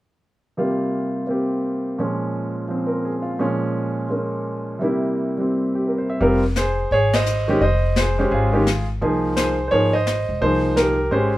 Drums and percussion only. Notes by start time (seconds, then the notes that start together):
6.21 brush sweep
6.56 snare, hi-hat pedal
6.91 brush sweep
7.13 snare, ride
7.26 hi-hat pedal
7.61 brush sweep
7.96 snare, hi-hat pedal
8.32 brush sweep
8.67 snare, hi-hat pedal
9.02 brush sweep
9.37 snare, hi-hat pedal
9.72 brush sweep
10.07 snare, hi-hat pedal
10.41 brush sweep
10.77 snare, hi-hat pedal
11.12 brush sweep